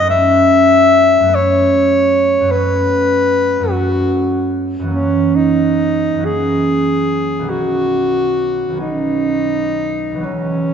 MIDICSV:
0, 0, Header, 1, 3, 480
1, 0, Start_track
1, 0, Tempo, 804290
1, 64, Time_signature, 12, 3, 24, 8
1, 2942, Tempo, 882353
1, 3902, Tempo, 842697
1, 4862, Tempo, 903614
1, 5342, Tempo, 970874
1, 6061, End_track
2, 0, Start_track
2, 0, Title_t, "Alto saxophone"
2, 0, Program_c, 0, 65
2, 61, Note_on_c, 0, 76, 93
2, 804, Note_on_c, 0, 73, 77
2, 813, Note_off_c, 0, 76, 0
2, 1500, Note_on_c, 0, 71, 86
2, 1509, Note_off_c, 0, 73, 0
2, 2211, Note_on_c, 0, 66, 62
2, 2220, Note_off_c, 0, 71, 0
2, 2691, Note_off_c, 0, 66, 0
2, 2935, Note_on_c, 0, 61, 64
2, 3174, Note_on_c, 0, 63, 71
2, 3182, Note_off_c, 0, 61, 0
2, 3662, Note_on_c, 0, 68, 69
2, 3670, Note_off_c, 0, 63, 0
2, 4362, Note_on_c, 0, 66, 67
2, 4370, Note_off_c, 0, 68, 0
2, 5083, Note_off_c, 0, 66, 0
2, 5086, Note_on_c, 0, 63, 63
2, 5816, Note_on_c, 0, 61, 50
2, 5824, Note_off_c, 0, 63, 0
2, 6061, Note_off_c, 0, 61, 0
2, 6061, End_track
3, 0, Start_track
3, 0, Title_t, "Harp"
3, 0, Program_c, 1, 46
3, 0, Note_on_c, 1, 42, 48
3, 0, Note_on_c, 1, 56, 35
3, 0, Note_on_c, 1, 63, 35
3, 5, Note_on_c, 1, 54, 38
3, 22, Note_on_c, 1, 57, 40
3, 40, Note_on_c, 1, 59, 40
3, 56, Note_on_c, 1, 61, 42
3, 65, Note_off_c, 1, 56, 0
3, 81, Note_off_c, 1, 63, 0
3, 710, Note_off_c, 1, 42, 0
3, 717, Note_on_c, 1, 42, 42
3, 726, Note_off_c, 1, 54, 0
3, 733, Note_on_c, 1, 54, 30
3, 743, Note_off_c, 1, 57, 0
3, 750, Note_on_c, 1, 57, 29
3, 757, Note_off_c, 1, 59, 0
3, 764, Note_on_c, 1, 59, 31
3, 775, Note_off_c, 1, 61, 0
3, 782, Note_on_c, 1, 61, 29
3, 1429, Note_off_c, 1, 42, 0
3, 1437, Note_on_c, 1, 42, 46
3, 1450, Note_off_c, 1, 54, 0
3, 1457, Note_on_c, 1, 54, 37
3, 1464, Note_off_c, 1, 57, 0
3, 1472, Note_on_c, 1, 57, 36
3, 1482, Note_off_c, 1, 59, 0
3, 1489, Note_on_c, 1, 59, 41
3, 1496, Note_off_c, 1, 61, 0
3, 1504, Note_on_c, 1, 61, 39
3, 2141, Note_off_c, 1, 42, 0
3, 2148, Note_on_c, 1, 42, 42
3, 2157, Note_off_c, 1, 54, 0
3, 2164, Note_on_c, 1, 54, 38
3, 2174, Note_off_c, 1, 57, 0
3, 2181, Note_on_c, 1, 57, 40
3, 2192, Note_off_c, 1, 59, 0
3, 2199, Note_on_c, 1, 59, 39
3, 2208, Note_off_c, 1, 61, 0
3, 2216, Note_on_c, 1, 61, 35
3, 2854, Note_off_c, 1, 42, 0
3, 2861, Note_on_c, 1, 42, 42
3, 2878, Note_on_c, 1, 52, 37
3, 2886, Note_off_c, 1, 54, 0
3, 2893, Note_on_c, 1, 54, 40
3, 2909, Note_on_c, 1, 58, 38
3, 2920, Note_off_c, 1, 61, 0
3, 2927, Note_on_c, 1, 61, 40
3, 2939, Note_off_c, 1, 57, 0
3, 2948, Note_off_c, 1, 59, 0
3, 3591, Note_off_c, 1, 42, 0
3, 3598, Note_on_c, 1, 42, 32
3, 3604, Note_off_c, 1, 52, 0
3, 3611, Note_on_c, 1, 52, 30
3, 3620, Note_off_c, 1, 54, 0
3, 3627, Note_on_c, 1, 54, 29
3, 3634, Note_off_c, 1, 58, 0
3, 3641, Note_on_c, 1, 58, 29
3, 3651, Note_off_c, 1, 61, 0
3, 3658, Note_on_c, 1, 61, 31
3, 4300, Note_on_c, 1, 35, 43
3, 4315, Note_on_c, 1, 51, 37
3, 4323, Note_off_c, 1, 54, 0
3, 4330, Note_on_c, 1, 54, 33
3, 4344, Note_on_c, 1, 59, 33
3, 4355, Note_off_c, 1, 61, 0
3, 4359, Note_off_c, 1, 42, 0
3, 4362, Note_on_c, 1, 61, 34
3, 4366, Note_off_c, 1, 52, 0
3, 4381, Note_off_c, 1, 58, 0
3, 5019, Note_off_c, 1, 35, 0
3, 5025, Note_on_c, 1, 35, 38
3, 5033, Note_off_c, 1, 51, 0
3, 5039, Note_on_c, 1, 51, 31
3, 5046, Note_off_c, 1, 54, 0
3, 5053, Note_on_c, 1, 54, 33
3, 5062, Note_off_c, 1, 59, 0
3, 5069, Note_on_c, 1, 59, 33
3, 5077, Note_off_c, 1, 61, 0
3, 5084, Note_on_c, 1, 61, 35
3, 5754, Note_on_c, 1, 37, 38
3, 5766, Note_on_c, 1, 52, 32
3, 5774, Note_off_c, 1, 54, 0
3, 5780, Note_on_c, 1, 54, 35
3, 5786, Note_off_c, 1, 59, 0
3, 5792, Note_on_c, 1, 59, 34
3, 5806, Note_on_c, 1, 63, 30
3, 5807, Note_off_c, 1, 35, 0
3, 5813, Note_off_c, 1, 51, 0
3, 6061, Note_off_c, 1, 37, 0
3, 6061, Note_off_c, 1, 52, 0
3, 6061, Note_off_c, 1, 54, 0
3, 6061, Note_off_c, 1, 59, 0
3, 6061, Note_off_c, 1, 61, 0
3, 6061, Note_off_c, 1, 63, 0
3, 6061, End_track
0, 0, End_of_file